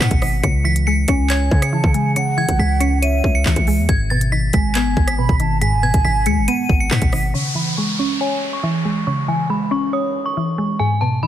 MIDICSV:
0, 0, Header, 1, 7, 480
1, 0, Start_track
1, 0, Key_signature, 4, "minor"
1, 0, Tempo, 431655
1, 485, Time_signature, 4, 2, 24, 8
1, 12533, End_track
2, 0, Start_track
2, 0, Title_t, "Synth bell"
2, 0, Program_c, 0, 98
2, 6, Note_on_c, 0, 95, 82
2, 456, Note_off_c, 0, 95, 0
2, 482, Note_on_c, 0, 97, 77
2, 672, Note_off_c, 0, 97, 0
2, 723, Note_on_c, 0, 95, 87
2, 913, Note_off_c, 0, 95, 0
2, 966, Note_on_c, 0, 97, 89
2, 1154, Note_off_c, 0, 97, 0
2, 1206, Note_on_c, 0, 97, 75
2, 1394, Note_off_c, 0, 97, 0
2, 1446, Note_on_c, 0, 92, 83
2, 1784, Note_off_c, 0, 92, 0
2, 1807, Note_on_c, 0, 97, 77
2, 2370, Note_off_c, 0, 97, 0
2, 2406, Note_on_c, 0, 97, 83
2, 2594, Note_off_c, 0, 97, 0
2, 2643, Note_on_c, 0, 92, 81
2, 2833, Note_off_c, 0, 92, 0
2, 2886, Note_on_c, 0, 95, 77
2, 3074, Note_off_c, 0, 95, 0
2, 3125, Note_on_c, 0, 97, 75
2, 3314, Note_off_c, 0, 97, 0
2, 3365, Note_on_c, 0, 99, 82
2, 3703, Note_off_c, 0, 99, 0
2, 3725, Note_on_c, 0, 97, 84
2, 4289, Note_off_c, 0, 97, 0
2, 4324, Note_on_c, 0, 92, 79
2, 4513, Note_off_c, 0, 92, 0
2, 4562, Note_on_c, 0, 93, 89
2, 4752, Note_off_c, 0, 93, 0
2, 4805, Note_on_c, 0, 95, 77
2, 4994, Note_off_c, 0, 95, 0
2, 5045, Note_on_c, 0, 95, 84
2, 5234, Note_off_c, 0, 95, 0
2, 5285, Note_on_c, 0, 92, 76
2, 5623, Note_off_c, 0, 92, 0
2, 5644, Note_on_c, 0, 95, 85
2, 6208, Note_off_c, 0, 95, 0
2, 6244, Note_on_c, 0, 95, 90
2, 6433, Note_off_c, 0, 95, 0
2, 6485, Note_on_c, 0, 92, 91
2, 6674, Note_off_c, 0, 92, 0
2, 6723, Note_on_c, 0, 95, 88
2, 6912, Note_off_c, 0, 95, 0
2, 6966, Note_on_c, 0, 97, 84
2, 7154, Note_off_c, 0, 97, 0
2, 7206, Note_on_c, 0, 99, 97
2, 7544, Note_off_c, 0, 99, 0
2, 7566, Note_on_c, 0, 97, 83
2, 7660, Note_off_c, 0, 97, 0
2, 7687, Note_on_c, 0, 95, 81
2, 8137, Note_off_c, 0, 95, 0
2, 8163, Note_on_c, 0, 85, 71
2, 8352, Note_off_c, 0, 85, 0
2, 8404, Note_on_c, 0, 83, 82
2, 8593, Note_off_c, 0, 83, 0
2, 8646, Note_on_c, 0, 85, 84
2, 8834, Note_off_c, 0, 85, 0
2, 8887, Note_on_c, 0, 85, 73
2, 9075, Note_off_c, 0, 85, 0
2, 9127, Note_on_c, 0, 80, 76
2, 9464, Note_off_c, 0, 80, 0
2, 9487, Note_on_c, 0, 85, 73
2, 10050, Note_off_c, 0, 85, 0
2, 10086, Note_on_c, 0, 85, 78
2, 10274, Note_off_c, 0, 85, 0
2, 10324, Note_on_c, 0, 80, 75
2, 10513, Note_off_c, 0, 80, 0
2, 10565, Note_on_c, 0, 83, 72
2, 10754, Note_off_c, 0, 83, 0
2, 10804, Note_on_c, 0, 85, 75
2, 10993, Note_off_c, 0, 85, 0
2, 11044, Note_on_c, 0, 87, 75
2, 11383, Note_off_c, 0, 87, 0
2, 11405, Note_on_c, 0, 85, 79
2, 11969, Note_off_c, 0, 85, 0
2, 12004, Note_on_c, 0, 80, 77
2, 12193, Note_off_c, 0, 80, 0
2, 12243, Note_on_c, 0, 81, 83
2, 12432, Note_off_c, 0, 81, 0
2, 12486, Note_on_c, 0, 83, 72
2, 12533, Note_off_c, 0, 83, 0
2, 12533, End_track
3, 0, Start_track
3, 0, Title_t, "Flute"
3, 0, Program_c, 1, 73
3, 0, Note_on_c, 1, 78, 81
3, 440, Note_off_c, 1, 78, 0
3, 1206, Note_on_c, 1, 80, 79
3, 1882, Note_off_c, 1, 80, 0
3, 1924, Note_on_c, 1, 81, 81
3, 2152, Note_off_c, 1, 81, 0
3, 2165, Note_on_c, 1, 80, 86
3, 2393, Note_off_c, 1, 80, 0
3, 2405, Note_on_c, 1, 78, 114
3, 3320, Note_off_c, 1, 78, 0
3, 3365, Note_on_c, 1, 76, 86
3, 3816, Note_off_c, 1, 76, 0
3, 5045, Note_on_c, 1, 80, 81
3, 5722, Note_off_c, 1, 80, 0
3, 5765, Note_on_c, 1, 83, 98
3, 5993, Note_off_c, 1, 83, 0
3, 6006, Note_on_c, 1, 81, 83
3, 6233, Note_off_c, 1, 81, 0
3, 6245, Note_on_c, 1, 80, 127
3, 7160, Note_off_c, 1, 80, 0
3, 7205, Note_on_c, 1, 78, 84
3, 8120, Note_off_c, 1, 78, 0
3, 12533, End_track
4, 0, Start_track
4, 0, Title_t, "Synth pluck"
4, 0, Program_c, 2, 84
4, 0, Note_on_c, 2, 51, 81
4, 0, Note_on_c, 2, 56, 102
4, 0, Note_on_c, 2, 59, 87
4, 7, Note_on_c, 2, 47, 90
4, 234, Note_off_c, 2, 51, 0
4, 248, Note_on_c, 2, 51, 76
4, 485, Note_off_c, 2, 56, 0
4, 486, Note_off_c, 2, 47, 0
4, 486, Note_off_c, 2, 51, 0
4, 486, Note_off_c, 2, 59, 0
4, 488, Note_on_c, 2, 49, 94
4, 716, Note_on_c, 2, 52, 74
4, 971, Note_on_c, 2, 56, 78
4, 1208, Note_on_c, 2, 61, 100
4, 1446, Note_on_c, 2, 73, 90
4, 1686, Note_off_c, 2, 49, 0
4, 1907, Note_off_c, 2, 52, 0
4, 1920, Note_on_c, 2, 52, 96
4, 2148, Note_off_c, 2, 56, 0
4, 2162, Note_on_c, 2, 56, 79
4, 2405, Note_on_c, 2, 49, 90
4, 2406, Note_off_c, 2, 61, 0
4, 2627, Note_off_c, 2, 52, 0
4, 2640, Note_on_c, 2, 52, 85
4, 2645, Note_off_c, 2, 73, 0
4, 2866, Note_off_c, 2, 56, 0
4, 2879, Note_on_c, 2, 56, 80
4, 3117, Note_on_c, 2, 61, 102
4, 3361, Note_on_c, 2, 73, 85
4, 3605, Note_off_c, 2, 49, 0
4, 3838, Note_off_c, 2, 52, 0
4, 3852, Note_on_c, 2, 52, 93
4, 4074, Note_off_c, 2, 56, 0
4, 4087, Note_on_c, 2, 56, 82
4, 4321, Note_off_c, 2, 61, 0
4, 4323, Note_off_c, 2, 73, 0
4, 4325, Note_on_c, 2, 44, 89
4, 4326, Note_off_c, 2, 56, 0
4, 4328, Note_off_c, 2, 52, 0
4, 4571, Note_on_c, 2, 47, 82
4, 4805, Note_on_c, 2, 51, 80
4, 5046, Note_on_c, 2, 56, 94
4, 5287, Note_on_c, 2, 59, 88
4, 5525, Note_off_c, 2, 44, 0
4, 5752, Note_off_c, 2, 47, 0
4, 5765, Note_on_c, 2, 47, 95
4, 5990, Note_off_c, 2, 51, 0
4, 6003, Note_on_c, 2, 51, 82
4, 6243, Note_on_c, 2, 44, 87
4, 6246, Note_off_c, 2, 56, 0
4, 6469, Note_off_c, 2, 47, 0
4, 6483, Note_on_c, 2, 47, 82
4, 6486, Note_off_c, 2, 59, 0
4, 6713, Note_off_c, 2, 51, 0
4, 6726, Note_on_c, 2, 51, 80
4, 6965, Note_on_c, 2, 56, 100
4, 7207, Note_on_c, 2, 59, 89
4, 7444, Note_off_c, 2, 44, 0
4, 7675, Note_off_c, 2, 47, 0
4, 7688, Note_on_c, 2, 47, 94
4, 7914, Note_off_c, 2, 51, 0
4, 7927, Note_on_c, 2, 51, 74
4, 8165, Note_off_c, 2, 56, 0
4, 8166, Note_off_c, 2, 47, 0
4, 8166, Note_off_c, 2, 51, 0
4, 8166, Note_off_c, 2, 59, 0
4, 8168, Note_on_c, 2, 49, 86
4, 8396, Note_on_c, 2, 52, 75
4, 8651, Note_on_c, 2, 56, 75
4, 8888, Note_on_c, 2, 61, 92
4, 9126, Note_on_c, 2, 73, 87
4, 9366, Note_off_c, 2, 49, 0
4, 9586, Note_off_c, 2, 52, 0
4, 9600, Note_on_c, 2, 52, 93
4, 9828, Note_off_c, 2, 56, 0
4, 9842, Note_on_c, 2, 56, 76
4, 10084, Note_on_c, 2, 49, 88
4, 10086, Note_off_c, 2, 61, 0
4, 10307, Note_off_c, 2, 52, 0
4, 10321, Note_on_c, 2, 52, 80
4, 10325, Note_off_c, 2, 73, 0
4, 10547, Note_off_c, 2, 56, 0
4, 10560, Note_on_c, 2, 56, 77
4, 10798, Note_on_c, 2, 61, 94
4, 11041, Note_on_c, 2, 73, 81
4, 11284, Note_off_c, 2, 49, 0
4, 11519, Note_off_c, 2, 52, 0
4, 11532, Note_on_c, 2, 52, 86
4, 11754, Note_off_c, 2, 56, 0
4, 11768, Note_on_c, 2, 56, 78
4, 12001, Note_off_c, 2, 61, 0
4, 12003, Note_off_c, 2, 73, 0
4, 12006, Note_off_c, 2, 56, 0
4, 12006, Note_on_c, 2, 44, 85
4, 12008, Note_off_c, 2, 52, 0
4, 12253, Note_on_c, 2, 47, 75
4, 12486, Note_on_c, 2, 51, 77
4, 12533, Note_off_c, 2, 44, 0
4, 12533, Note_off_c, 2, 47, 0
4, 12533, Note_off_c, 2, 51, 0
4, 12533, End_track
5, 0, Start_track
5, 0, Title_t, "808-style bass"
5, 0, Program_c, 3, 38
5, 4, Note_on_c, 3, 44, 108
5, 117, Note_off_c, 3, 44, 0
5, 124, Note_on_c, 3, 32, 103
5, 470, Note_off_c, 3, 32, 0
5, 484, Note_on_c, 3, 37, 117
5, 1176, Note_off_c, 3, 37, 0
5, 1205, Note_on_c, 3, 37, 104
5, 1666, Note_off_c, 3, 37, 0
5, 1684, Note_on_c, 3, 49, 103
5, 2030, Note_off_c, 3, 49, 0
5, 2043, Note_on_c, 3, 49, 106
5, 2735, Note_off_c, 3, 49, 0
5, 2765, Note_on_c, 3, 37, 101
5, 2880, Note_off_c, 3, 37, 0
5, 2885, Note_on_c, 3, 37, 105
5, 3576, Note_off_c, 3, 37, 0
5, 3604, Note_on_c, 3, 37, 104
5, 3835, Note_off_c, 3, 37, 0
5, 3844, Note_on_c, 3, 37, 106
5, 3956, Note_off_c, 3, 37, 0
5, 3963, Note_on_c, 3, 37, 109
5, 4204, Note_on_c, 3, 40, 98
5, 4221, Note_off_c, 3, 37, 0
5, 4319, Note_off_c, 3, 40, 0
5, 4324, Note_on_c, 3, 32, 112
5, 5016, Note_off_c, 3, 32, 0
5, 5045, Note_on_c, 3, 32, 103
5, 5404, Note_on_c, 3, 30, 100
5, 5421, Note_off_c, 3, 32, 0
5, 5519, Note_off_c, 3, 30, 0
5, 5524, Note_on_c, 3, 32, 104
5, 5870, Note_off_c, 3, 32, 0
5, 5883, Note_on_c, 3, 32, 114
5, 6364, Note_on_c, 3, 30, 104
5, 6380, Note_off_c, 3, 32, 0
5, 6484, Note_on_c, 3, 32, 100
5, 6501, Note_off_c, 3, 30, 0
5, 6598, Note_off_c, 3, 32, 0
5, 6605, Note_on_c, 3, 32, 102
5, 6720, Note_off_c, 3, 32, 0
5, 6725, Note_on_c, 3, 32, 102
5, 6964, Note_on_c, 3, 39, 101
5, 6981, Note_off_c, 3, 32, 0
5, 7084, Note_on_c, 3, 32, 100
5, 7101, Note_off_c, 3, 39, 0
5, 7198, Note_off_c, 3, 32, 0
5, 7444, Note_on_c, 3, 32, 103
5, 7675, Note_off_c, 3, 32, 0
5, 7685, Note_on_c, 3, 44, 112
5, 7797, Note_off_c, 3, 44, 0
5, 7804, Note_on_c, 3, 32, 101
5, 8150, Note_off_c, 3, 32, 0
5, 12533, End_track
6, 0, Start_track
6, 0, Title_t, "Downlifter"
6, 0, Program_c, 4, 103
6, 8164, Note_on_c, 4, 60, 80
6, 12004, Note_off_c, 4, 60, 0
6, 12533, End_track
7, 0, Start_track
7, 0, Title_t, "Drums"
7, 5, Note_on_c, 9, 39, 127
7, 116, Note_off_c, 9, 39, 0
7, 121, Note_on_c, 9, 42, 71
7, 123, Note_on_c, 9, 36, 99
7, 233, Note_off_c, 9, 42, 0
7, 235, Note_off_c, 9, 36, 0
7, 242, Note_on_c, 9, 46, 51
7, 245, Note_on_c, 9, 37, 90
7, 353, Note_off_c, 9, 46, 0
7, 356, Note_off_c, 9, 37, 0
7, 484, Note_on_c, 9, 36, 117
7, 484, Note_on_c, 9, 42, 71
7, 595, Note_off_c, 9, 42, 0
7, 596, Note_off_c, 9, 36, 0
7, 844, Note_on_c, 9, 42, 87
7, 955, Note_off_c, 9, 42, 0
7, 1200, Note_on_c, 9, 42, 84
7, 1205, Note_on_c, 9, 36, 100
7, 1311, Note_off_c, 9, 42, 0
7, 1316, Note_off_c, 9, 36, 0
7, 1444, Note_on_c, 9, 39, 118
7, 1444, Note_on_c, 9, 42, 90
7, 1555, Note_off_c, 9, 39, 0
7, 1556, Note_off_c, 9, 42, 0
7, 1684, Note_on_c, 9, 36, 100
7, 1795, Note_off_c, 9, 36, 0
7, 1803, Note_on_c, 9, 37, 98
7, 1805, Note_on_c, 9, 42, 87
7, 1914, Note_off_c, 9, 37, 0
7, 1916, Note_off_c, 9, 42, 0
7, 2043, Note_on_c, 9, 36, 102
7, 2154, Note_off_c, 9, 36, 0
7, 2161, Note_on_c, 9, 42, 66
7, 2272, Note_off_c, 9, 42, 0
7, 2404, Note_on_c, 9, 42, 71
7, 2515, Note_off_c, 9, 42, 0
7, 2764, Note_on_c, 9, 42, 85
7, 2765, Note_on_c, 9, 36, 92
7, 2875, Note_off_c, 9, 42, 0
7, 2876, Note_off_c, 9, 36, 0
7, 3120, Note_on_c, 9, 42, 81
7, 3231, Note_off_c, 9, 42, 0
7, 3364, Note_on_c, 9, 42, 90
7, 3475, Note_off_c, 9, 42, 0
7, 3604, Note_on_c, 9, 36, 98
7, 3715, Note_off_c, 9, 36, 0
7, 3844, Note_on_c, 9, 39, 126
7, 3956, Note_off_c, 9, 39, 0
7, 3961, Note_on_c, 9, 42, 73
7, 3963, Note_on_c, 9, 36, 101
7, 4073, Note_off_c, 9, 42, 0
7, 4074, Note_off_c, 9, 36, 0
7, 4081, Note_on_c, 9, 46, 52
7, 4193, Note_off_c, 9, 46, 0
7, 4324, Note_on_c, 9, 36, 124
7, 4324, Note_on_c, 9, 42, 72
7, 4435, Note_off_c, 9, 42, 0
7, 4436, Note_off_c, 9, 36, 0
7, 4684, Note_on_c, 9, 42, 85
7, 4795, Note_off_c, 9, 42, 0
7, 5040, Note_on_c, 9, 42, 80
7, 5045, Note_on_c, 9, 36, 101
7, 5151, Note_off_c, 9, 42, 0
7, 5156, Note_off_c, 9, 36, 0
7, 5284, Note_on_c, 9, 39, 115
7, 5284, Note_on_c, 9, 42, 93
7, 5395, Note_off_c, 9, 39, 0
7, 5396, Note_off_c, 9, 42, 0
7, 5524, Note_on_c, 9, 36, 103
7, 5635, Note_off_c, 9, 36, 0
7, 5644, Note_on_c, 9, 37, 97
7, 5645, Note_on_c, 9, 42, 86
7, 5755, Note_off_c, 9, 37, 0
7, 5757, Note_off_c, 9, 42, 0
7, 5883, Note_on_c, 9, 36, 103
7, 5995, Note_off_c, 9, 36, 0
7, 6002, Note_on_c, 9, 42, 64
7, 6113, Note_off_c, 9, 42, 0
7, 6244, Note_on_c, 9, 42, 71
7, 6355, Note_off_c, 9, 42, 0
7, 6604, Note_on_c, 9, 42, 81
7, 6605, Note_on_c, 9, 36, 92
7, 6716, Note_off_c, 9, 42, 0
7, 6717, Note_off_c, 9, 36, 0
7, 6960, Note_on_c, 9, 42, 83
7, 7071, Note_off_c, 9, 42, 0
7, 7205, Note_on_c, 9, 42, 91
7, 7316, Note_off_c, 9, 42, 0
7, 7444, Note_on_c, 9, 36, 99
7, 7556, Note_off_c, 9, 36, 0
7, 7685, Note_on_c, 9, 39, 123
7, 7796, Note_off_c, 9, 39, 0
7, 7802, Note_on_c, 9, 42, 70
7, 7804, Note_on_c, 9, 36, 99
7, 7913, Note_off_c, 9, 42, 0
7, 7915, Note_off_c, 9, 36, 0
7, 7922, Note_on_c, 9, 46, 52
7, 7925, Note_on_c, 9, 37, 85
7, 8033, Note_off_c, 9, 46, 0
7, 8036, Note_off_c, 9, 37, 0
7, 12533, End_track
0, 0, End_of_file